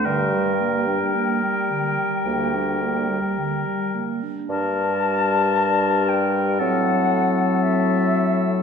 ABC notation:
X:1
M:4/4
L:1/16
Q:1/4=55
K:Gm
V:1 name="Flute"
g12- g2 z2 | a6 g2 ^f4 =e4 |]
V:2 name="Oboe"
B12- B2 z2 | B8 A8 |]
V:3 name="Clarinet"
D, G, B, D B, G, D, G, B, D B, G, D, G, B, D | D8 C8 |]
V:4 name="French horn" clef=bass
G,12- G,2 z2 | G,8 ^F,8 |]
V:5 name="Bassoon" clef=bass
G,,4 z4 D,,4 z4 | G,,8 A,,8 |]